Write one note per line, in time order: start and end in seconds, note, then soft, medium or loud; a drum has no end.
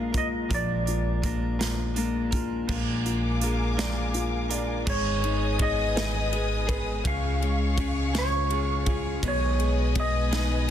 0.00 0.46 A#1 medium
0.00 0.13 G#3 soft
0.00 1.24 A#3 medium
0.00 0.14 D4 soft
0.00 0.13 F4 medium
0.00 0.14 F4 soft
0.00 0.11 A#4 medium
0.00 0.12 F5 medium
0.13 0.49 G#3 soft
0.13 0.50 F4 soft
0.13 0.86 F4 medium
0.13 0.50 A#4 medium
0.13 kick medium
0.13 closed hi-hat medium
0.18 0.27 D#5 medium
0.49 2.65 A#1 medium
0.49 0.86 A#2 medium
0.49 0.86 F3 medium
0.49 2.65 F3 medium
0.49 0.87 G#3 medium
0.49 0.87 D4 medium
0.49 0.86 F4 medium
0.49 0.84 A#4 medium
0.49 kick loud
0.49 closed hi-hat medium
0.54 2.30 D5 medium
0.86 1.21 G#3 soft
0.86 1.22 D4 soft
0.86 1.23 F4 soft
0.86 1.59 F4 soft
0.86 1.23 A#4 soft
0.86 closed hi-hat soft
1.22 1.59 G#3 medium
1.22 1.95 A#3 soft
1.22 1.59 D4 medium
1.22 1.58 F4 soft
1.22 1.58 A#4 medium
1.22 kick medium
1.22 closed hi-hat medium
1.59 1.97 A#2 medium
1.59 1.97 F3 medium
1.59 1.93 G#3 medium
1.59 1.94 D4 medium
1.59 1.95 F4 medium
1.59 2.32 F4 soft
1.59 1.96 A#4 medium
1.59 snare loud
1.59 closed hi-hat medium
1.94 2.31 G#3 medium
1.94 2.67 A#3 medium
1.94 2.32 D4 medium
1.94 2.31 F4 medium
1.94 2.30 A#4 medium
1.94 closed hi-hat soft
2.31 2.68 G#3 soft
2.31 2.68 D4 soft
2.31 2.69 F4 medium
2.31 2.68 F4 medium
2.31 2.68 A#4 medium
2.31 kick medium
2.31 closed hi-hat medium
2.67 4.83 A#1 medium
2.67 3.41 A#2 medium
2.67 3.41 F3 medium
2.67 3.40 G#3 medium
2.67 4.83 A#3 medium
2.67 3.40 D4 medium
2.67 3.41 F4 medium
2.67 4.85 A#4 medium
2.67 3.42 A#4 medium
2.67 4.85 F5 medium
2.67 4.85 G#5 medium
2.67 4.85 D6 medium
2.67 kick loud
2.67 crash medium
3.06 4.12 F4 soft
3.06 closed hi-hat soft
3.40 3.77 G#3 medium
3.40 3.77 D4 medium
3.40 3.76 F4 medium
3.40 4.83 G#4 medium
3.40 3.76 A#4 medium
3.40 closed hi-hat medium
3.77 4.51 A#2 medium
3.77 4.51 F3 medium
3.77 4.52 G#3 medium
3.77 4.50 D4 medium
3.77 4.50 F4 medium
3.77 4.48 A#4 medium
3.77 4.49 D5 medium
3.77 snare loud
3.77 closed hi-hat medium
4.14 4.85 F4 medium
4.14 closed hi-hat soft
4.50 4.86 G#3 soft
4.50 4.87 D4 medium
4.50 4.87 F4 medium
4.50 4.87 A#4 medium
4.50 4.86 D5 medium
4.50 closed hi-hat medium
4.86 7.01 G#1 loud
4.86 5.23 G#2 medium
4.86 5.23 D#3 medium
4.86 7.01 G#3 medium
4.86 5.23 G#3 medium
4.86 5.22 B3 medium
4.86 5.21 D#4 medium
4.86 5.20 G#4 medium
4.86 7.03 B4 medium
4.86 5.57 C#5 loud
4.86 7.03 D#5 medium
4.86 7.03 G#5 medium
4.86 7.03 D#6 medium
4.86 kick loud
4.86 crash medium
5.21 5.57 G#3 soft
5.21 5.58 B3 soft
5.21 5.59 D#4 medium
5.21 6.65 D#4 medium
5.21 5.59 G#4 medium
5.21 ride soft
5.59 5.95 G#3 medium
5.59 5.95 B3 medium
5.59 5.95 D#4 medium
5.59 6.30 G#4 medium
5.59 5.94 G#4 medium
5.59 6.66 D#5 loud
5.59 kick medium
5.59 ride medium
5.95 6.33 G#2 medium
5.95 6.33 D#3 medium
5.95 6.30 G#3 medium
5.95 6.31 B3 medium
5.95 6.32 D#4 medium
5.95 6.32 G#4 medium
5.95 6.67 B4 medium
5.95 snare loud
5.95 ride medium
6.31 6.68 G#3 medium
6.31 6.68 B3 medium
6.31 6.67 D#4 medium
6.31 7.03 G#4 medium
6.31 6.66 G#4 medium
6.31 ride soft
6.67 7.04 G#3 soft
6.67 7.05 B3 medium
6.67 7.05 D#4 medium
6.67 7.04 G#4 medium
6.67 7.04 B4 medium
6.67 kick medium
6.67 ride medium
7.04 9.19 C#2 loud
7.04 7.41 C#3 medium
7.04 9.19 C#3 medium
7.04 7.41 G#3 medium
7.04 7.42 C#4 medium
7.04 7.41 F4 medium
7.04 9.21 G#4 medium
7.04 7.39 G#4 medium
7.04 9.21 C#5 medium
7.04 9.21 F5 medium
7.04 8.18 F5 loud
7.04 9.21 C#6 medium
7.04 kick loud
7.04 ride medium
7.40 8.83 G#3 medium
7.40 7.77 C#4 soft
7.40 7.78 F4 medium
7.40 7.77 G#4 medium
7.40 ride soft
7.77 8.14 G#3 medium
7.77 9.19 C#4 medium
7.77 8.13 C#4 medium
7.77 8.13 F4 medium
7.77 8.12 G#4 medium
7.77 kick loud
7.77 ride medium
8.13 8.51 C#3 medium
8.13 8.48 G#3 medium
8.13 8.50 C#4 medium
8.13 8.50 F4 medium
8.13 8.85 F4 soft
8.13 8.50 G#4 medium
8.13 snare loud
8.13 ride medium
8.18 8.94 C#5 medium
8.49 8.86 G#3 medium
8.49 8.87 C#4 medium
8.49 8.87 F4 medium
8.49 9.21 G#4 medium
8.49 8.85 G#4 medium
8.49 ride soft
8.86 9.24 C#4 soft
8.86 9.22 F4 medium
8.86 9.24 F4 medium
8.86 9.23 G#4 medium
8.86 kick medium
8.86 ride medium
9.23 10.71 B1 loud
9.23 9.59 B2 medium
9.23 10.71 B2 medium
9.23 9.59 D#3 medium
9.23 9.60 G#3 medium
9.23 9.60 B3 medium
9.23 9.59 D#4 medium
9.23 9.58 G#4 medium
9.23 10.71 B4 medium
9.23 10.71 D#5 medium
9.23 10.71 G#5 medium
9.23 10.71 D#6 medium
9.23 kick loud
9.23 ride medium
9.28 9.94 C#5 loud
9.59 10.71 G#3 medium
9.59 9.94 G#3 soft
9.59 9.95 B3 medium
9.59 9.96 D#4 medium
9.59 9.95 G#4 medium
9.59 ride soft
9.95 10.32 G#3 medium
9.95 10.71 B3 medium
9.95 10.31 B3 medium
9.95 10.31 D#4 medium
9.95 10.30 G#4 medium
9.95 kick loud
9.95 ride medium
10.00 10.71 D#5 medium
10.31 10.69 B2 medium
10.31 10.69 D#3 medium
10.31 10.66 G#3 medium
10.31 10.67 B3 medium
10.31 10.68 D#4 medium
10.31 10.71 D#4 medium
10.31 10.68 G#4 medium
10.31 snare loud
10.31 ride medium
10.67 10.71 G#3 medium